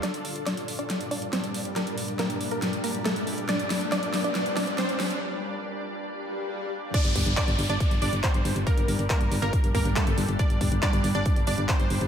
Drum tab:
CC |----------------|----------------|----------------|----------------|
HH |xxoxxxoxxxoxxxox|xxoxxxoxxxoxxxox|xxoxxxoxxxoxxxox|----------------|
CP |----------------|----------------|----------------|----------------|
SD |o---o---o---o---|o---o---o---o---|o-o-o-o-o-o-o-o-|----------------|
BD |----------------|----------------|----------------|----------------|

CC |x---------------|----------------|----------------|
HH |xxoxxxoxxxoxxxox|xxoxxxoxxxoxxxox|xxoxxxoxxxoxxxox|
CP |----x-------x---|----x-------x---|----x-------x---|
SD |----------------|----------------|----------------|
BD |o-o-o---o---o---|o---o---o-o-o---|o-o-o---o---o---|